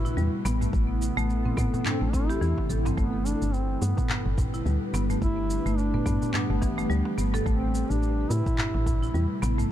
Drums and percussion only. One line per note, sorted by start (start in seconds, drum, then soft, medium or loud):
0.06 shaker soft
0.18 shaker soft
0.46 darbuka tek medium
0.46 shaker medium
0.61 mid tom medium
0.61 shaker soft
0.73 kick loud
0.73 shaker soft
1.02 shaker medium
1.18 shaker soft
1.30 shaker soft
1.45 darbuka dum medium
1.57 kick loud
1.57 darbuka ka medium
1.57 darbuka tek medium
1.57 shaker medium
1.74 darbuka dum medium
1.74 shaker soft
1.86 clap medium
1.86 mid tom medium
1.86 shaker soft
2.13 kick loud
2.13 darbuka tek medium
2.13 shaker medium
2.29 darbuka ka medium
2.29 shaker soft
2.42 shaker soft
2.58 kick medium
2.58 darbuka tek medium
2.70 darbuka ka medium
2.70 shaker medium
2.85 mid tom medium
2.85 darbuka ka medium
2.85 darbuka tek medium
2.85 shaker soft
2.98 kick loud
2.98 shaker soft
3.26 shaker medium
3.42 shaker soft
3.54 shaker soft
3.82 darbuka ka medium
3.82 shaker medium
3.97 kick loud
3.97 darbuka dum medium
3.97 shaker soft
4.09 clap medium
4.09 mid tom medium
4.09 shaker soft
4.26 darbuka ka medium
4.38 kick loud
4.38 mid tom medium
4.38 darbuka ka soft
4.38 darbuka dum medium
4.38 shaker medium
4.54 shaker soft
4.66 shaker soft
4.94 darbuka tek medium
4.94 shaker medium
5.10 mid tom medium
5.10 shaker soft
5.22 kick loud
5.22 shaker soft
5.50 shaker medium
5.66 shaker soft
5.78 shaker soft
5.94 darbuka dum medium
6.06 kick medium
6.06 darbuka ka medium
6.06 darbuka tek medium
6.06 shaker medium
6.22 darbuka dum medium
6.22 shaker soft
6.34 clap medium
6.34 mid tom medium
6.34 shaker soft
6.62 kick loud
6.62 darbuka tek medium
6.62 shaker medium
6.78 darbuka ka medium
6.78 shaker soft
6.90 shaker soft
7.05 darbuka tek medium
7.18 darbuka ka soft
7.18 shaker medium
7.34 mid tom medium
7.34 darbuka ka medium
7.34 darbuka tek medium
7.34 shaker soft
7.46 kick loud
7.46 shaker soft
7.75 shaker medium
7.91 shaker soft
8.03 shaker soft
8.31 darbuka ka medium
8.31 shaker medium
8.46 kick loud
8.46 darbuka dum medium
8.46 shaker soft
8.58 clap medium
8.58 mid tom medium
8.58 shaker soft
8.74 darbuka ka medium
8.86 kick loud
8.86 mid tom medium
8.86 darbuka ka medium
8.86 darbuka dum medium
8.86 shaker medium
9.03 shaker soft
9.15 shaker soft
9.43 darbuka tek medium
9.43 shaker medium
9.59 mid tom medium
9.59 shaker soft